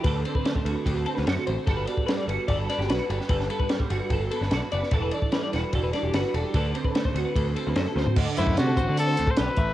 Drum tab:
CC |----------------|----------------|----------------|----------------|
RD |x-x-x-x-x-x-x-x-|x-x-x-x-x-x-x-x-|x-x-x-x-x-x-x-x-|x-x-x-x-x-x-x-x-|
HH |----------------|----------------|----------------|----------------|
SD |----o------oo---|----o-----ooo--o|-o--o------oo--o|----o-o---o-o---|
FT |----------------|----------------|----------------|----------------|
BD |o--o-o--o-------|o--o----o-------|o--o-o--o-------|o--o----o-------|

CC |----------------|x---------------|
RD |x-x-x-x-x-x-x---|----------------|
HH |----------------|--x-x-x-x-x-x-x-|
SD |----o-------o-o-|----o-------o---|
FT |---------------o|----------------|
BD |o--o-o--o-------|o--o--o----o--o-|